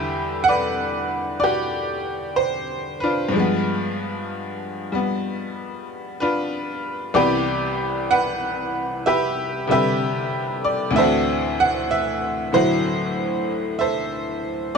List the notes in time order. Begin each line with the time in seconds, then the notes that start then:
Already playing: E2 D3 G3 D4 G4 B4 E5
0.44 F#5
0.48 B4 D5
1.40 G4 D5
1.44 F#4
2.36 C5
3.00 D4 F4 B4
3.29 G2 F3
3.35 G#3
3.40 B3
4.92 G3 B3
6.20 D4 F4 B4
7.14 C2 C3 E3 B3 G4 B4 D5
8.11 B4 F#5
9.06 G4 B4 E5
9.67 C3 D3 G3 E5
9.72 G4 B4
10.64 D5
10.91 D2 A2
10.95 E3 D4 A4 C5 E5
10.99 C4 F#4
11.60 F#5
11.91 E5
12.53 A2 D3 F#3 A3 E4 F#4 C5
13.79 A4 C5 E5